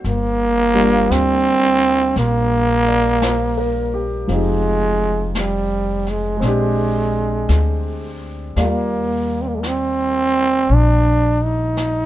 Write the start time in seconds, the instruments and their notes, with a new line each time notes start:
Already playing: grand piano C5
0.04 upright bass G1, trombone A#3, brush sweep, snare
0.74 grand piano G3 A#3 D4 F4
1.10 upright bass D2, trombone C4, brush sweep, snare, hi-hat pedal
2.16 upright bass A#1, trombone A#3, brush sweep, snare
2.87 grand piano D5
3.22 grand piano C5, brush sweep, snare, hi-hat pedal
3.58 grand piano A#4
3.94 grand piano G4
4.28 upright bass F1, grand piano F3 C4 D#4, brush sweep, snare
4.32 trombone G#3, grand piano G4
5.35 trombone G3, brush sweep, snare, hi-hat pedal
6.07 trombone G#3, snare
6.37 upright bass A#1, grand piano G#3 C4
6.42 grand piano D4, brush sweep, snare
6.47 grand piano G4
7.49 upright bass D2, brush sweep, snare, hi-hat pedal
8.56 upright bass D#2, grand piano G3 A#3 F4 D5, brush sweep, snare
8.60 trombone A#3
9.42 trombone C4
9.48 trombone A#3
9.55 trombone G#3
9.60 trombone A#3, brush sweep, snare, hi-hat pedal
9.67 trombone C4
10.69 upright bass A#1, brush sweep
10.74 trombone D4
11.44 trombone D#4
11.77 brush sweep, snare, hi-hat pedal